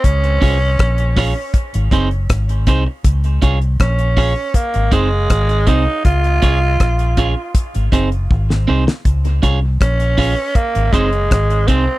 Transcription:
<<
  \new Staff \with { instrumentName = "Clean electric guitar" } { \time 4/4 \key des \major \tempo 4 = 80 r8 <des' f' aes' des''>8 r8 <des' f' aes' des''>8 r8 <c' ees' aes' c''>8 r8 <c' ees' aes' c''>8 | r8 <des' f' aes' des''>8 r8 <des' f' aes' des''>8 r8 <c' ees' aes' c''>8 r8 <c' ees' aes' c''>8 | r8 <des' f' aes' des''>8 r8 <des' f' aes' des''>8 r8 <c' ees' aes' c''>8 r8 <c' ees' aes' c''>8 | r8 <des' f' aes' des''>8 r8 <des' f' aes' des''>8 r8 <c' ees' aes' c''>8 r8 <c' ees' aes' c''>8 | }
  \new Staff \with { instrumentName = "Tenor saxophone" } { \time 4/4 \key des \major des'2 r2 | r4 des'4 bes8 aes4 ees'8 | f'2 r2 | r4 des'4 bes8 aes4 c'8 | }
  \new Staff \with { instrumentName = "Fingered electric bass" } { \clef bass \time 4/4 \key des \major des,8 c,8 bes,,8. r8 aes,,16 ges,,8 aes,,8 c,16 r16 | des,8 c,8 bes,,8. r8 aes,,16 ges,,8 aes,,8 c,16 r16 | des,8 c,8 bes,,8. r8 aes,,16 ges,,8 aes,,8 c,16 r16 | des,8 c,8 bes,,8. r8 aes,,16 r8 aes,,8 c,16 r16 | }
  \new DrumStaff \with { instrumentName = "Drums" } \drummode { \time 4/4 <hh bd>16 hh16 <hho bd>8 <hh bd ss>16 hh16 <hho bd ss>8 <hh bd>16 hh16 <hh bd>16 hh16 <hh bd ss>16 hh16 <hh bd>8 | <hh bd>16 hh16 <hh bd>16 hh16 <hh bd ss>16 hh16 <hho bd>8 <hh bd>16 hh16 <hh bd>8 <hh bd ss>16 hh16 <hh bd>8 | <hh bd>16 hh16 <hh bd>8 <hh bd ss>16 hh16 <hh bd>8 <hh bd>16 hh16 <hh bd>16 hh16 bd16 sn8 sn16 | <hh bd>16 hh16 <hh bd>8 <hh bd ss>16 hh16 <hho bd>8 <hh bd>16 hh16 <hh bd>16 hh16 <hh bd ss>16 hh16 <hh bd>8 | }
>>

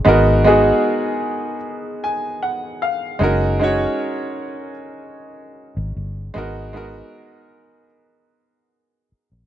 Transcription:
<<
  \new Staff \with { instrumentName = "Grand piano" } { \time 4/4 \key gis \dorian \tempo 4 = 76 <gis b dis' fis' ais'>8 <gis b dis' fis' gis'>4. r8 gis''8 fis''8 eis''8 | <gis cis' dis' fis' ais'>8 <gis cis' dis' fis' cis''>4. r2 | <gis b dis' fis' ais'>8 <gis b dis' fis' ais'>4. r2 | }
  \new Staff \with { instrumentName = "Fingered electric bass" } { \clef bass \time 4/4 \key gis \dorian gis,,4 r2. | fis,,4 r2 r16 gis,,16 g,,8 | gis,,4 r2 r8. ais,,16 | }
>>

